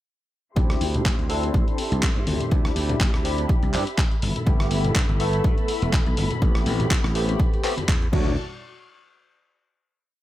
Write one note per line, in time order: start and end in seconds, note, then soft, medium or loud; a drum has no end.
0.56 0.75 D2 medium
0.56 1.27 C4 medium
0.56 1.27 D4 medium
0.56 1.27 E4 medium
0.56 4.19 G4 medium
0.56 1.28 G4 medium
0.56 4.18 E5 medium
0.56 2.50 C6 medium
0.56 kick loud
0.56 closed hi-hat soft
0.70 cross-stick medium
0.70 closed hi-hat soft
0.81 0.99 D2 medium
0.81 open hi-hat medium
0.94 closed hi-hat soft
0.94 tambourine soft
0.94 low conga medium
1.04 1.15 A1 medium
1.04 kick loud
1.04 clap loud
1.04 closed hi-hat medium
1.04 tambourine soft
1.19 1.49 D2 medium
1.19 closed hi-hat soft
1.29 2.49 C4 medium
1.29 2.49 D4 medium
1.29 2.49 E4 medium
1.29 2.50 A4 medium
1.29 open hi-hat medium
1.43 closed hi-hat soft
1.54 1.64 A1 medium
1.54 kick loud
1.54 closed hi-hat soft
1.68 closed hi-hat soft
1.78 open hi-hat loud
1.78 tambourine medium
1.92 2.09 C2 medium
1.92 closed hi-hat medium
2.03 kick loud
2.03 clap loud
2.03 closed hi-hat soft
2.16 2.24 G2 loud
2.16 closed hi-hat soft
2.27 2.37 D2 medium
2.27 open hi-hat loud
2.27 tambourine loud
2.27 high conga medium
2.40 closed hi-hat medium
2.40 tambourine soft
2.40 low conga medium
2.51 2.70 D2 medium
2.51 3.22 C4 medium
2.51 3.22 D4 medium
2.51 3.23 E4 medium
2.51 3.23 G4 medium
2.51 4.21 B5 medium
2.51 kick loud
2.51 closed hi-hat soft
2.51 tambourine soft
2.65 cross-stick medium
2.65 closed hi-hat soft
2.75 2.94 D2 medium
2.75 open hi-hat loud
2.75 tambourine medium
2.89 closed hi-hat soft
2.89 tambourine soft
2.89 low conga loud
3.00 3.10 A1 medium
3.00 kick loud
3.00 clap loud
3.00 closed hi-hat medium
3.00 tambourine soft
3.14 3.45 D2 medium
3.14 cross-stick medium
3.14 closed hi-hat soft
3.25 3.71 C4 medium
3.25 3.71 D4 medium
3.25 3.71 E4 medium
3.25 3.71 G4 medium
3.25 open hi-hat loud
3.25 tambourine medium
3.38 closed hi-hat soft
3.38 tambourine soft
3.49 kick loud
3.49 closed hi-hat soft
3.63 3.75 C2 medium
3.63 closed hi-hat soft
3.63 tambourine soft
3.73 3.83 G2 medium
3.73 3.82 C4 medium
3.73 3.82 D4 medium
3.73 3.82 E4 medium
3.73 3.83 G4 medium
3.73 clap medium
3.73 open hi-hat loud
3.87 closed hi-hat soft
3.98 kick loud
3.98 clap loud
4.12 closed hi-hat soft
4.22 4.32 G1 medium
4.22 6.40 A4 medium
4.22 6.40 E5 medium
4.22 8.09 B5 medium
4.22 open hi-hat loud
4.22 tambourine medium
4.22 high conga medium
4.36 closed hi-hat medium
4.36 tambourine soft
4.36 low conga medium
4.46 4.65 G1 medium
4.46 5.17 A3 medium
4.46 5.17 B3 medium
4.46 5.18 E4 medium
4.46 5.18 G4 loud
4.46 kick loud
4.46 closed hi-hat soft
4.60 cross-stick medium
4.60 closed hi-hat soft
4.71 4.90 G1 medium
4.71 open hi-hat loud
4.71 tambourine medium
4.84 closed hi-hat soft
4.84 tambourine soft
4.84 low conga medium
4.95 5.05 G2 medium
4.95 kick loud
4.95 clap loud
4.95 closed hi-hat medium
4.95 tambourine medium
5.09 5.40 G1 medium
5.09 closed hi-hat soft
5.20 6.39 A3 medium
5.20 6.39 B3 medium
5.20 6.40 E4 medium
5.20 6.40 A4 loud
5.20 open hi-hat loud
5.20 tambourine medium
5.33 closed hi-hat soft
5.33 tambourine soft
5.44 5.54 G2 medium
5.44 kick loud
5.44 closed hi-hat soft
5.58 closed hi-hat soft
5.58 tambourine soft
5.68 open hi-hat loud
5.68 tambourine medium
5.82 5.99 E1 medium
5.82 closed hi-hat soft
5.93 kick loud
5.93 clap loud
5.93 closed hi-hat soft
6.06 6.15 B1 loud
6.06 closed hi-hat soft
6.17 6.27 G1 medium
6.17 open hi-hat loud
6.17 tambourine medium
6.17 high conga medium
6.30 closed hi-hat soft
6.30 tambourine soft
6.30 low conga medium
6.42 6.60 A1 medium
6.42 7.12 A3 medium
6.42 7.13 B3 medium
6.42 7.13 C4 medium
6.42 8.11 G4 medium
6.42 7.13 G4 medium
6.42 kick loud
6.42 closed hi-hat soft
6.42 tambourine soft
6.54 cross-stick medium
6.54 closed hi-hat soft
6.54 tambourine soft
6.66 6.85 A1 loud
6.66 open hi-hat loud
6.66 tambourine medium
6.79 closed hi-hat soft
6.79 tambourine soft
6.79 low conga medium
6.90 kick loud
6.90 clap loud
6.90 closed hi-hat medium
6.90 tambourine soft
7.04 7.35 A1 medium
7.04 cross-stick medium
7.04 closed hi-hat soft
7.15 7.61 A3 medium
7.15 7.61 B3 medium
7.15 7.61 C4 medium
7.15 7.62 G4 medium
7.15 open hi-hat loud
7.15 tambourine medium
7.29 closed hi-hat soft
7.40 kick loud
7.40 closed hi-hat soft
7.40 tambourine soft
7.53 closed hi-hat soft
7.53 tambourine soft
7.64 7.73 A3 medium
7.64 7.73 B3 medium
7.64 7.73 C4 medium
7.64 7.73 G4 loud
7.64 clap medium
7.64 open hi-hat loud
7.64 tambourine medium
7.77 muted slap bass stroke soft
7.77 closed hi-hat soft
7.77 tambourine soft
7.77 high conga medium
7.88 8.07 E2 medium
7.88 kick loud
7.88 clap loud
7.88 closed hi-hat soft
7.88 tambourine soft
8.02 closed hi-hat soft
8.12 8.36 D2 medium
8.12 8.31 F#3 medium
8.12 8.31 A3 medium
8.12 8.32 D4 medium
8.12 8.36 F#4 medium
8.12 8.32 F#4 medium
8.12 8.35 D5 medium
8.12 8.36 A5 medium
8.12 kick loud
8.12 crash medium
8.12 tambourine medium
8.12 high conga medium
8.26 tambourine soft
8.26 low conga medium